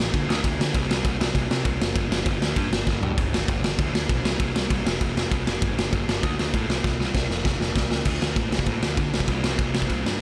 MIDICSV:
0, 0, Header, 1, 3, 480
1, 0, Start_track
1, 0, Tempo, 305188
1, 1167, Time_signature, 4, 2, 24, 8
1, 16058, End_track
2, 0, Start_track
2, 0, Title_t, "Picked electric bass"
2, 0, Program_c, 0, 34
2, 218, Note_on_c, 0, 50, 90
2, 383, Note_off_c, 0, 50, 0
2, 451, Note_on_c, 0, 38, 97
2, 619, Note_off_c, 0, 38, 0
2, 699, Note_on_c, 0, 38, 102
2, 863, Note_off_c, 0, 38, 0
2, 938, Note_on_c, 0, 50, 94
2, 1102, Note_off_c, 0, 50, 0
2, 1173, Note_on_c, 0, 36, 107
2, 1339, Note_off_c, 0, 36, 0
2, 1397, Note_on_c, 0, 36, 101
2, 1569, Note_off_c, 0, 36, 0
2, 1645, Note_on_c, 0, 36, 94
2, 1814, Note_off_c, 0, 36, 0
2, 1889, Note_on_c, 0, 36, 103
2, 2056, Note_off_c, 0, 36, 0
2, 2118, Note_on_c, 0, 36, 88
2, 2289, Note_off_c, 0, 36, 0
2, 2365, Note_on_c, 0, 48, 99
2, 2533, Note_off_c, 0, 48, 0
2, 2598, Note_on_c, 0, 36, 85
2, 2769, Note_off_c, 0, 36, 0
2, 2835, Note_on_c, 0, 30, 93
2, 3006, Note_off_c, 0, 30, 0
2, 3075, Note_on_c, 0, 31, 105
2, 3246, Note_off_c, 0, 31, 0
2, 3304, Note_on_c, 0, 31, 98
2, 3479, Note_off_c, 0, 31, 0
2, 3552, Note_on_c, 0, 31, 105
2, 3725, Note_off_c, 0, 31, 0
2, 3781, Note_on_c, 0, 38, 89
2, 3957, Note_off_c, 0, 38, 0
2, 4034, Note_on_c, 0, 43, 95
2, 4205, Note_off_c, 0, 43, 0
2, 4272, Note_on_c, 0, 31, 86
2, 4444, Note_off_c, 0, 31, 0
2, 4520, Note_on_c, 0, 31, 94
2, 4689, Note_off_c, 0, 31, 0
2, 4727, Note_on_c, 0, 43, 86
2, 4907, Note_off_c, 0, 43, 0
2, 5003, Note_on_c, 0, 31, 93
2, 5170, Note_off_c, 0, 31, 0
2, 5224, Note_on_c, 0, 31, 89
2, 5398, Note_off_c, 0, 31, 0
2, 5479, Note_on_c, 0, 31, 100
2, 5647, Note_off_c, 0, 31, 0
2, 5695, Note_on_c, 0, 31, 91
2, 5871, Note_off_c, 0, 31, 0
2, 5953, Note_on_c, 0, 38, 92
2, 6123, Note_off_c, 0, 38, 0
2, 6186, Note_on_c, 0, 38, 86
2, 6358, Note_off_c, 0, 38, 0
2, 6437, Note_on_c, 0, 35, 97
2, 6606, Note_off_c, 0, 35, 0
2, 6662, Note_on_c, 0, 36, 84
2, 6836, Note_off_c, 0, 36, 0
2, 6917, Note_on_c, 0, 36, 111
2, 7085, Note_off_c, 0, 36, 0
2, 7148, Note_on_c, 0, 36, 101
2, 7320, Note_off_c, 0, 36, 0
2, 7395, Note_on_c, 0, 36, 103
2, 7564, Note_off_c, 0, 36, 0
2, 7620, Note_on_c, 0, 29, 100
2, 7794, Note_off_c, 0, 29, 0
2, 7880, Note_on_c, 0, 29, 105
2, 8047, Note_off_c, 0, 29, 0
2, 8107, Note_on_c, 0, 29, 95
2, 8279, Note_off_c, 0, 29, 0
2, 8358, Note_on_c, 0, 36, 90
2, 8526, Note_off_c, 0, 36, 0
2, 8578, Note_on_c, 0, 29, 91
2, 8752, Note_off_c, 0, 29, 0
2, 8838, Note_on_c, 0, 31, 107
2, 9005, Note_off_c, 0, 31, 0
2, 9080, Note_on_c, 0, 31, 95
2, 9247, Note_off_c, 0, 31, 0
2, 9320, Note_on_c, 0, 31, 103
2, 9487, Note_off_c, 0, 31, 0
2, 9566, Note_on_c, 0, 31, 91
2, 9731, Note_off_c, 0, 31, 0
2, 9804, Note_on_c, 0, 38, 103
2, 9970, Note_off_c, 0, 38, 0
2, 10061, Note_on_c, 0, 38, 94
2, 10220, Note_off_c, 0, 38, 0
2, 10290, Note_on_c, 0, 45, 90
2, 10454, Note_off_c, 0, 45, 0
2, 10524, Note_on_c, 0, 36, 91
2, 10690, Note_off_c, 0, 36, 0
2, 10771, Note_on_c, 0, 36, 101
2, 10934, Note_off_c, 0, 36, 0
2, 11003, Note_on_c, 0, 36, 97
2, 11169, Note_off_c, 0, 36, 0
2, 11237, Note_on_c, 0, 36, 97
2, 11405, Note_off_c, 0, 36, 0
2, 11484, Note_on_c, 0, 29, 90
2, 11650, Note_off_c, 0, 29, 0
2, 11724, Note_on_c, 0, 29, 98
2, 11890, Note_off_c, 0, 29, 0
2, 11954, Note_on_c, 0, 29, 87
2, 12123, Note_off_c, 0, 29, 0
2, 12206, Note_on_c, 0, 36, 93
2, 12371, Note_off_c, 0, 36, 0
2, 12422, Note_on_c, 0, 37, 91
2, 12596, Note_off_c, 0, 37, 0
2, 12672, Note_on_c, 0, 38, 94
2, 12883, Note_off_c, 0, 38, 0
2, 12906, Note_on_c, 0, 38, 90
2, 13120, Note_off_c, 0, 38, 0
2, 13150, Note_on_c, 0, 45, 89
2, 13362, Note_off_c, 0, 45, 0
2, 13377, Note_on_c, 0, 36, 97
2, 13595, Note_off_c, 0, 36, 0
2, 13632, Note_on_c, 0, 45, 90
2, 13844, Note_off_c, 0, 45, 0
2, 13873, Note_on_c, 0, 38, 92
2, 14084, Note_off_c, 0, 38, 0
2, 14116, Note_on_c, 0, 50, 95
2, 14326, Note_off_c, 0, 50, 0
2, 14365, Note_on_c, 0, 36, 88
2, 14572, Note_off_c, 0, 36, 0
2, 14594, Note_on_c, 0, 36, 100
2, 14806, Note_off_c, 0, 36, 0
2, 14832, Note_on_c, 0, 36, 96
2, 15045, Note_off_c, 0, 36, 0
2, 15078, Note_on_c, 0, 36, 97
2, 15289, Note_off_c, 0, 36, 0
2, 15305, Note_on_c, 0, 36, 96
2, 15522, Note_off_c, 0, 36, 0
2, 15567, Note_on_c, 0, 36, 89
2, 15774, Note_off_c, 0, 36, 0
2, 15791, Note_on_c, 0, 43, 86
2, 16006, Note_off_c, 0, 43, 0
2, 16058, End_track
3, 0, Start_track
3, 0, Title_t, "Drums"
3, 217, Note_on_c, 9, 36, 103
3, 218, Note_on_c, 9, 49, 67
3, 374, Note_off_c, 9, 36, 0
3, 375, Note_off_c, 9, 49, 0
3, 475, Note_on_c, 9, 38, 104
3, 632, Note_off_c, 9, 38, 0
3, 694, Note_on_c, 9, 36, 107
3, 701, Note_on_c, 9, 49, 60
3, 852, Note_off_c, 9, 36, 0
3, 858, Note_off_c, 9, 49, 0
3, 960, Note_on_c, 9, 38, 117
3, 1117, Note_off_c, 9, 38, 0
3, 1172, Note_on_c, 9, 36, 116
3, 1180, Note_on_c, 9, 49, 65
3, 1329, Note_off_c, 9, 36, 0
3, 1337, Note_off_c, 9, 49, 0
3, 1430, Note_on_c, 9, 38, 124
3, 1587, Note_off_c, 9, 38, 0
3, 1648, Note_on_c, 9, 36, 115
3, 1655, Note_on_c, 9, 49, 62
3, 1805, Note_off_c, 9, 36, 0
3, 1812, Note_off_c, 9, 49, 0
3, 1906, Note_on_c, 9, 38, 121
3, 2063, Note_off_c, 9, 38, 0
3, 2122, Note_on_c, 9, 36, 103
3, 2126, Note_on_c, 9, 49, 60
3, 2279, Note_off_c, 9, 36, 0
3, 2284, Note_off_c, 9, 49, 0
3, 2375, Note_on_c, 9, 38, 98
3, 2532, Note_off_c, 9, 38, 0
3, 2598, Note_on_c, 9, 36, 117
3, 2600, Note_on_c, 9, 49, 64
3, 2756, Note_off_c, 9, 36, 0
3, 2758, Note_off_c, 9, 49, 0
3, 2856, Note_on_c, 9, 38, 123
3, 3013, Note_off_c, 9, 38, 0
3, 3076, Note_on_c, 9, 36, 122
3, 3083, Note_on_c, 9, 49, 64
3, 3233, Note_off_c, 9, 36, 0
3, 3240, Note_off_c, 9, 49, 0
3, 3335, Note_on_c, 9, 38, 124
3, 3492, Note_off_c, 9, 38, 0
3, 3552, Note_on_c, 9, 49, 70
3, 3553, Note_on_c, 9, 36, 121
3, 3709, Note_off_c, 9, 49, 0
3, 3710, Note_off_c, 9, 36, 0
3, 3809, Note_on_c, 9, 38, 112
3, 3966, Note_off_c, 9, 38, 0
3, 4027, Note_on_c, 9, 49, 69
3, 4032, Note_on_c, 9, 36, 106
3, 4184, Note_off_c, 9, 49, 0
3, 4190, Note_off_c, 9, 36, 0
3, 4290, Note_on_c, 9, 38, 119
3, 4447, Note_off_c, 9, 38, 0
3, 4514, Note_on_c, 9, 36, 111
3, 4524, Note_on_c, 9, 38, 64
3, 4671, Note_off_c, 9, 36, 0
3, 4681, Note_off_c, 9, 38, 0
3, 4763, Note_on_c, 9, 43, 95
3, 4921, Note_off_c, 9, 43, 0
3, 4998, Note_on_c, 9, 49, 58
3, 4999, Note_on_c, 9, 36, 120
3, 5156, Note_off_c, 9, 36, 0
3, 5156, Note_off_c, 9, 49, 0
3, 5258, Note_on_c, 9, 38, 115
3, 5415, Note_off_c, 9, 38, 0
3, 5479, Note_on_c, 9, 36, 116
3, 5482, Note_on_c, 9, 49, 59
3, 5637, Note_off_c, 9, 36, 0
3, 5640, Note_off_c, 9, 49, 0
3, 5729, Note_on_c, 9, 38, 117
3, 5886, Note_off_c, 9, 38, 0
3, 5956, Note_on_c, 9, 49, 66
3, 5958, Note_on_c, 9, 36, 122
3, 6113, Note_off_c, 9, 49, 0
3, 6115, Note_off_c, 9, 36, 0
3, 6214, Note_on_c, 9, 38, 109
3, 6372, Note_off_c, 9, 38, 0
3, 6440, Note_on_c, 9, 36, 118
3, 6443, Note_on_c, 9, 49, 62
3, 6597, Note_off_c, 9, 36, 0
3, 6600, Note_off_c, 9, 49, 0
3, 6689, Note_on_c, 9, 38, 124
3, 6847, Note_off_c, 9, 38, 0
3, 6917, Note_on_c, 9, 36, 110
3, 6918, Note_on_c, 9, 49, 71
3, 7075, Note_off_c, 9, 36, 0
3, 7075, Note_off_c, 9, 49, 0
3, 7169, Note_on_c, 9, 38, 123
3, 7327, Note_off_c, 9, 38, 0
3, 7400, Note_on_c, 9, 36, 110
3, 7401, Note_on_c, 9, 49, 69
3, 7557, Note_off_c, 9, 36, 0
3, 7558, Note_off_c, 9, 49, 0
3, 7653, Note_on_c, 9, 38, 123
3, 7810, Note_off_c, 9, 38, 0
3, 7876, Note_on_c, 9, 49, 70
3, 7880, Note_on_c, 9, 36, 101
3, 8033, Note_off_c, 9, 49, 0
3, 8038, Note_off_c, 9, 36, 0
3, 8137, Note_on_c, 9, 38, 108
3, 8294, Note_off_c, 9, 38, 0
3, 8360, Note_on_c, 9, 36, 107
3, 8360, Note_on_c, 9, 49, 65
3, 8517, Note_off_c, 9, 36, 0
3, 8518, Note_off_c, 9, 49, 0
3, 8607, Note_on_c, 9, 38, 124
3, 8765, Note_off_c, 9, 38, 0
3, 8838, Note_on_c, 9, 49, 66
3, 8840, Note_on_c, 9, 36, 125
3, 8995, Note_off_c, 9, 49, 0
3, 8997, Note_off_c, 9, 36, 0
3, 9102, Note_on_c, 9, 38, 122
3, 9259, Note_off_c, 9, 38, 0
3, 9322, Note_on_c, 9, 49, 59
3, 9323, Note_on_c, 9, 36, 104
3, 9479, Note_off_c, 9, 49, 0
3, 9481, Note_off_c, 9, 36, 0
3, 9578, Note_on_c, 9, 38, 116
3, 9735, Note_off_c, 9, 38, 0
3, 9803, Note_on_c, 9, 36, 110
3, 9804, Note_on_c, 9, 49, 64
3, 9961, Note_off_c, 9, 36, 0
3, 9961, Note_off_c, 9, 49, 0
3, 10056, Note_on_c, 9, 38, 107
3, 10213, Note_off_c, 9, 38, 0
3, 10283, Note_on_c, 9, 36, 110
3, 10286, Note_on_c, 9, 49, 60
3, 10440, Note_off_c, 9, 36, 0
3, 10444, Note_off_c, 9, 49, 0
3, 10536, Note_on_c, 9, 38, 107
3, 10693, Note_off_c, 9, 38, 0
3, 10763, Note_on_c, 9, 36, 113
3, 10780, Note_on_c, 9, 38, 68
3, 10920, Note_off_c, 9, 36, 0
3, 10938, Note_off_c, 9, 38, 0
3, 11020, Note_on_c, 9, 38, 68
3, 11178, Note_off_c, 9, 38, 0
3, 11239, Note_on_c, 9, 36, 108
3, 11249, Note_on_c, 9, 38, 81
3, 11396, Note_off_c, 9, 36, 0
3, 11406, Note_off_c, 9, 38, 0
3, 11491, Note_on_c, 9, 38, 72
3, 11648, Note_off_c, 9, 38, 0
3, 11718, Note_on_c, 9, 36, 108
3, 11726, Note_on_c, 9, 38, 84
3, 11875, Note_off_c, 9, 36, 0
3, 11883, Note_off_c, 9, 38, 0
3, 11966, Note_on_c, 9, 38, 89
3, 12123, Note_off_c, 9, 38, 0
3, 12198, Note_on_c, 9, 36, 109
3, 12218, Note_on_c, 9, 38, 109
3, 12355, Note_off_c, 9, 36, 0
3, 12375, Note_off_c, 9, 38, 0
3, 12449, Note_on_c, 9, 38, 104
3, 12606, Note_off_c, 9, 38, 0
3, 12665, Note_on_c, 9, 49, 55
3, 12665, Note_on_c, 9, 57, 110
3, 12673, Note_on_c, 9, 36, 106
3, 12822, Note_off_c, 9, 49, 0
3, 12822, Note_off_c, 9, 57, 0
3, 12831, Note_off_c, 9, 36, 0
3, 12931, Note_on_c, 9, 38, 112
3, 13089, Note_off_c, 9, 38, 0
3, 13151, Note_on_c, 9, 49, 58
3, 13154, Note_on_c, 9, 36, 112
3, 13308, Note_off_c, 9, 49, 0
3, 13311, Note_off_c, 9, 36, 0
3, 13407, Note_on_c, 9, 38, 110
3, 13511, Note_on_c, 9, 36, 88
3, 13564, Note_off_c, 9, 38, 0
3, 13623, Note_on_c, 9, 49, 58
3, 13631, Note_off_c, 9, 36, 0
3, 13631, Note_on_c, 9, 36, 93
3, 13780, Note_off_c, 9, 49, 0
3, 13788, Note_off_c, 9, 36, 0
3, 13883, Note_on_c, 9, 38, 109
3, 14040, Note_off_c, 9, 38, 0
3, 14110, Note_on_c, 9, 49, 58
3, 14114, Note_on_c, 9, 36, 103
3, 14268, Note_off_c, 9, 49, 0
3, 14272, Note_off_c, 9, 36, 0
3, 14371, Note_on_c, 9, 38, 102
3, 14475, Note_on_c, 9, 36, 82
3, 14528, Note_off_c, 9, 38, 0
3, 14590, Note_on_c, 9, 49, 59
3, 14595, Note_off_c, 9, 36, 0
3, 14595, Note_on_c, 9, 36, 92
3, 14747, Note_off_c, 9, 49, 0
3, 14752, Note_off_c, 9, 36, 0
3, 14847, Note_on_c, 9, 38, 113
3, 15004, Note_off_c, 9, 38, 0
3, 15078, Note_on_c, 9, 49, 58
3, 15080, Note_on_c, 9, 36, 109
3, 15235, Note_off_c, 9, 49, 0
3, 15237, Note_off_c, 9, 36, 0
3, 15328, Note_on_c, 9, 38, 108
3, 15443, Note_on_c, 9, 36, 93
3, 15485, Note_off_c, 9, 38, 0
3, 15566, Note_off_c, 9, 36, 0
3, 15566, Note_on_c, 9, 36, 83
3, 15567, Note_on_c, 9, 49, 60
3, 15723, Note_off_c, 9, 36, 0
3, 15724, Note_off_c, 9, 49, 0
3, 15829, Note_on_c, 9, 38, 104
3, 15986, Note_off_c, 9, 38, 0
3, 16058, End_track
0, 0, End_of_file